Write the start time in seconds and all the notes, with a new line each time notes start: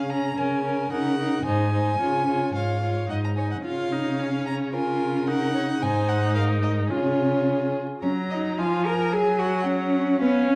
Already playing: C#3 F5
0.09 C#4 G#4 A#5
0.37 C#3 C#4 A#4 G#5
0.64 C#4 A#4
0.92 C#3 D#4 A#4 F#5
1.19 D#4 A#4
1.46 G#2 D#4 C5 G#5
1.72 D#4 C5
2.00 C#3 F4 C#5
2.28 F4 C#5
2.55 G#2 F4 C#5 F5
2.82 F4 C#5
3.10 G#2 D#4 D#5 F#5
3.24 A#5
3.37 D#4 C#5 G#5
3.51 F#5
3.64 C#3 F4 C#5 F5
3.92 D#4
4.20 C#4
4.47 A#5
4.73 F4 A#4 G#5
5.28 D#4 A#4 F#5
5.55 C#5
5.82 G#2 D#4 C5 G#5
6.09 F#5
6.35 A#4 F5
6.63 D#5
6.90 C#3 F4 G#4 C#5
8.02 F#3 C#4 C#5 A#5
8.30 D#4 D#5
8.58 F3 F4 F5 G#5
8.85 A#4 A#5
9.12 F#3 G#4 G#5
9.39 F#4 F#5
9.67 C#4 C#5 F#5
10.21 B3 C#4 B4 F5
10.48 C#4 C#5